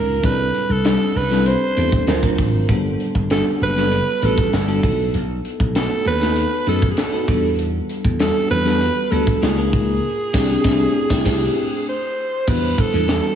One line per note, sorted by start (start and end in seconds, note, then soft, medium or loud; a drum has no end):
0.00 0.19 C#2 medium
0.00 0.25 G#3 medium
0.00 0.25 C#4 medium
0.00 0.26 D#4 medium
0.00 0.26 F4 medium
0.00 0.21 A#4 medium
0.00 0.26 A#4 medium
0.23 0.49 C2 medium
0.23 0.62 G3 medium
0.23 0.62 C4 medium
0.23 0.62 D4 medium
0.23 0.62 E4 medium
0.23 0.62 A4 medium
0.23 0.73 B4 loud
0.23 kick loud
0.23 closed hi-hat medium
0.55 closed hi-hat medium
0.69 0.95 C2 medium
0.69 1.18 A4 medium
0.84 1.13 G3 medium
0.84 1.13 C4 medium
0.84 1.14 D4 medium
0.84 1.14 E4 medium
0.84 1.14 A4 medium
0.84 snare loud
0.84 closed hi-hat medium
1.16 1.54 C2 medium
1.16 1.48 B4 medium
1.16 open hi-hat medium
1.30 1.59 G3 medium
1.30 1.59 C4 medium
1.30 1.60 D4 medium
1.30 1.60 E4 medium
1.30 1.60 A4 medium
1.30 snare soft
1.46 2.39 C5 loud
1.46 closed hi-hat medium
1.76 2.02 E2 medium
1.76 2.05 G3 medium
1.76 2.06 C4 medium
1.76 2.06 D4 medium
1.76 2.06 E4 medium
1.76 2.06 A4 medium
1.76 closed hi-hat medium
1.92 kick medium
2.07 2.20 D2 medium
2.07 2.20 F#3 medium
2.07 2.20 C4 medium
2.07 2.20 D4 medium
2.07 2.20 F4 medium
2.07 2.20 A#4 medium
2.07 snare loud
2.07 closed hi-hat medium
2.22 2.36 D2 medium
2.22 2.51 F#3 medium
2.22 2.51 C4 medium
2.22 2.52 D4 medium
2.22 2.52 F4 medium
2.22 2.52 A#4 medium
2.22 kick medium
2.38 2.54 A1 medium
2.38 kick medium
2.38 open hi-hat medium
2.54 2.66 G#1 medium
2.69 2.94 G1 loud
2.69 3.07 G3 medium
2.69 3.07 B3 medium
2.69 3.07 D4 medium
2.69 3.08 F#4 medium
2.69 3.08 A4 medium
2.69 kick loud
2.69 closed hi-hat medium
3.00 closed hi-hat medium
3.15 3.40 G1 medium
3.15 kick medium
3.30 3.59 G3 medium
3.30 3.59 B3 medium
3.30 3.59 D4 medium
3.30 3.59 F#4 medium
3.30 3.59 A4 medium
3.30 3.45 A4 medium
3.30 snare loud
3.30 closed hi-hat medium
3.61 3.99 F#1 loud
3.61 4.26 B4 loud
3.61 open hi-hat medium
3.76 4.05 G3 medium
3.76 4.05 B3 medium
3.76 4.05 D4 medium
3.76 4.05 F#4 medium
3.76 4.05 A4 medium
3.76 snare soft
3.92 closed hi-hat medium
4.22 4.48 A1 medium
4.22 4.51 G3 medium
4.22 4.51 B3 medium
4.22 4.51 D4 medium
4.22 4.51 F#4 medium
4.22 4.54 A4 medium
4.22 4.51 B4 medium
4.22 closed hi-hat medium
4.38 kick medium
4.38 snare soft
4.53 4.78 G1 medium
4.53 5.11 A4 medium
4.53 snare loud
4.53 closed hi-hat medium
4.67 4.83 G3 medium
4.67 4.82 B3 medium
4.67 4.83 D4 medium
4.67 4.83 F#4 medium
4.67 4.83 A4 medium
4.83 5.09 B1 medium
4.83 5.57 A3 medium
4.83 5.57 B3 medium
4.83 5.57 D#4 medium
4.83 5.57 F#4 medium
4.83 5.57 A4 medium
4.83 kick loud
4.83 open hi-hat medium
5.14 5.39 B1 medium
5.14 closed hi-hat medium
5.45 closed hi-hat medium
5.60 5.85 B1 medium
5.60 kick medium
5.75 6.04 A3 medium
5.75 6.04 B3 medium
5.75 6.04 D#4 medium
5.75 6.04 F#4 medium
5.75 6.04 A4 medium
5.75 6.04 B4 medium
5.75 snare loud
5.75 closed hi-hat medium
6.06 6.44 D#2 medium
6.06 6.64 B4 loud
6.06 open hi-hat medium
6.21 6.49 A3 medium
6.21 6.50 B3 medium
6.21 6.50 D#4 medium
6.21 6.50 F#4 medium
6.21 6.50 A4 medium
6.21 snare soft
6.36 closed hi-hat medium
6.66 6.92 F#2 medium
6.66 6.95 A3 medium
6.66 6.95 B3 medium
6.66 6.96 D#4 medium
6.66 6.96 F#4 medium
6.66 6.96 A4 medium
6.66 6.90 A4 medium
6.66 closed hi-hat medium
6.82 kick medium
6.91 7.01 G#4 medium
6.97 7.59 A4 medium
6.97 snare loud
6.97 closed hi-hat medium
7.12 7.28 A3 medium
7.12 7.27 B3 medium
7.12 7.28 D#4 medium
7.12 7.27 F#4 medium
7.12 7.29 B4 medium
7.28 7.79 E2 medium
7.28 8.01 G3 medium
7.28 8.01 B3 medium
7.28 8.01 D4 medium
7.28 8.02 F#4 medium
7.28 8.02 A4 medium
7.28 kick loud
7.28 open hi-hat medium
7.59 closed hi-hat medium
7.90 closed hi-hat medium
8.05 8.30 E2 medium
8.05 kick medium
8.19 8.48 G3 medium
8.19 8.48 B3 medium
8.19 8.48 D4 medium
8.19 8.48 F#4 medium
8.19 8.49 A4 medium
8.19 snare loud
8.19 closed hi-hat medium
8.50 8.88 E2 medium
8.50 9.12 B4 loud
8.50 open hi-hat medium
8.65 8.94 G3 medium
8.65 8.94 B3 medium
8.65 8.94 D4 medium
8.65 8.94 F#4 medium
8.65 8.94 A4 medium
8.65 snare soft
8.81 closed hi-hat medium
9.11 9.37 D2 medium
9.11 9.40 G3 medium
9.11 9.40 B3 medium
9.11 9.40 D4 medium
9.11 9.40 F#4 medium
9.11 9.43 A4 medium
9.11 9.40 A4 medium
9.11 closed hi-hat medium
9.27 kick medium
9.42 9.68 C#2 medium
9.42 9.54 A#3 medium
9.42 9.54 C#4 medium
9.42 9.54 D#4 medium
9.42 9.54 F4 medium
9.42 11.86 G#4 medium
9.42 9.55 G#4 medium
9.42 snare loud
9.42 closed hi-hat medium
9.56 9.85 A#3 medium
9.56 9.86 C#4 medium
9.56 9.86 D#4 medium
9.56 9.86 F4 medium
9.56 9.86 A#4 medium
9.73 9.98 C#2 medium
9.73 kick loud
9.73 open hi-hat medium
10.33 10.55 C2 medium
10.33 10.54 A3 medium
10.33 10.54 C4 medium
10.33 10.55 D4 medium
10.33 10.55 E4 medium
10.33 10.55 G4 medium
10.33 kick loud
10.33 snare loud
10.33 crash medium
10.64 10.85 C2 medium
10.64 10.85 A3 medium
10.64 10.85 C4 medium
10.64 10.85 D4 loud
10.64 10.85 E4 medium
10.64 10.85 G4 medium
10.64 kick loud
10.64 snare loud
11.09 11.23 C2 loud
11.09 11.23 A3 medium
11.09 11.23 C4 medium
11.09 11.23 D4 loud
11.09 11.23 E4 loud
11.09 11.23 G4 medium
11.09 kick medium
11.09 snare loud
11.25 11.46 C2 medium
11.25 11.46 A3 medium
11.25 11.46 C4 medium
11.25 11.46 D4 medium
11.25 11.46 E4 medium
11.25 11.46 G4 loud
11.25 kick loud
11.25 snare medium
11.25 crash medium
11.89 12.51 C5 medium
12.47 12.73 E2 loud
12.47 12.76 G3 medium
12.47 12.76 B3 medium
12.47 12.76 D4 medium
12.47 12.76 E4 medium
12.47 12.76 F#4 medium
12.47 12.81 B4 medium
12.47 kick medium
12.47 crash medium
12.78 13.35 A4 medium
12.78 kick medium
12.78 closed hi-hat medium
12.93 13.19 E2 medium
12.93 13.22 G3 medium
12.93 13.22 B3 medium
12.93 13.22 D4 medium
12.93 13.22 E4 medium
12.93 13.22 A4 medium
13.08 snare loud
13.08 closed hi-hat medium